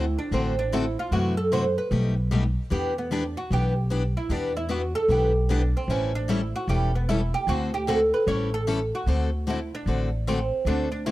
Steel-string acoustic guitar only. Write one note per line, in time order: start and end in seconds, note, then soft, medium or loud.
0.32 0.54 D3 medium
0.32 0.54 A3 medium
0.32 0.54 C4 medium
0.32 0.55 F#4 medium
0.32 0.54 A4 medium
0.72 0.84 D3 medium
0.72 0.84 A3 medium
0.72 0.84 C4 medium
0.72 0.84 F#4 medium
0.72 0.84 A4 medium
1.12 1.33 C3 medium
1.12 1.34 E3 medium
1.12 1.34 A3 medium
1.12 1.34 E4 medium
1.12 1.34 F#4 medium
1.52 1.63 C3 medium
1.52 1.63 E3 medium
1.52 1.63 A3 medium
1.52 1.64 E4 medium
1.52 1.64 F#4 medium
1.91 2.13 B2 medium
1.91 2.13 G3 medium
1.91 2.13 A3 medium
1.91 2.13 D#4 medium
1.91 2.14 G4 medium
2.31 2.42 B2 medium
2.31 2.42 G3 medium
2.31 2.43 A3 medium
2.31 2.43 D#4 medium
2.31 2.43 G4 medium
2.70 2.92 E3 medium
2.70 2.93 B3 medium
2.70 2.93 D4 medium
2.70 2.93 G4 medium
3.11 3.22 E3 medium
3.11 3.22 B3 medium
3.11 3.23 D4 medium
3.11 3.23 G4 medium
3.52 3.73 E3 medium
3.52 3.73 B3 medium
3.52 3.73 D4 medium
3.52 3.73 G4 medium
3.90 4.01 E3 medium
3.90 4.02 B3 medium
3.90 4.02 D4 medium
3.90 4.02 G4 medium
4.30 4.51 E3 medium
4.30 4.52 B3 medium
4.30 4.52 D4 medium
4.30 4.52 G4 medium
4.69 4.80 E3 medium
4.69 4.81 B3 medium
4.69 4.81 D4 medium
4.69 4.81 G4 medium
5.09 5.31 E3 medium
5.09 5.31 B3 medium
5.09 5.31 D4 medium
5.09 5.32 G4 medium
5.49 5.60 E3 medium
5.49 5.61 B3 medium
5.49 5.61 D4 medium
5.49 5.61 G4 medium
5.90 6.11 E3 medium
5.90 6.11 G3 medium
5.90 6.11 C#4 medium
5.90 6.11 E4 medium
5.90 6.12 A4 medium
6.28 6.40 E3 medium
6.28 6.40 G3 medium
6.28 6.40 C#4 medium
6.28 6.40 E4 medium
6.28 6.40 A4 medium
6.69 6.90 E3 medium
6.69 6.90 G3 medium
6.69 6.90 C#4 medium
6.69 6.91 E4 medium
6.69 6.91 A4 medium
7.09 7.20 E3 medium
7.09 7.20 G3 medium
7.09 7.20 C#4 medium
7.09 7.20 E4 medium
7.09 7.20 A4 medium
7.48 7.69 D3 medium
7.48 7.70 A3 medium
7.48 7.70 C4 medium
7.48 7.70 F#4 medium
7.48 7.70 A4 medium
7.87 7.99 D3 medium
7.87 7.99 A3 medium
7.87 7.99 C4 medium
7.87 7.99 F#4 medium
7.87 7.99 A4 medium
8.27 8.49 E3 medium
8.27 8.49 G3 medium
8.27 8.49 C#4 medium
8.27 8.49 E4 medium
8.27 8.49 A4 medium
8.67 8.78 E3 medium
8.67 8.78 G3 medium
8.67 8.79 C#4 medium
8.67 8.79 E4 medium
8.67 8.79 A4 medium
9.07 9.29 D3 medium
9.07 9.29 A3 medium
9.07 9.29 C4 medium
9.07 9.29 F#4 medium
9.07 9.29 A4 medium
9.47 9.58 D3 medium
9.47 9.58 A3 medium
9.47 9.58 C4 medium
9.47 9.58 F#4 medium
9.47 9.59 A4 medium
9.87 10.08 D3 medium
9.87 10.08 A3 medium
9.87 10.09 C4 medium
9.87 10.09 F#4 medium
9.87 10.09 A4 medium
10.27 10.38 D3 medium
10.27 10.38 A3 medium
10.27 10.38 C4 medium
10.27 10.38 F#4 medium
10.27 10.39 A4 medium
10.66 10.88 D3 medium
10.66 10.88 A3 medium
10.66 10.88 C4 medium
10.66 10.88 F#4 medium
10.66 10.88 A4 medium
11.06 11.11 D3 medium
11.06 11.11 A3 medium
11.06 11.11 C4 medium
11.06 11.11 F#4 medium
11.06 11.11 A4 medium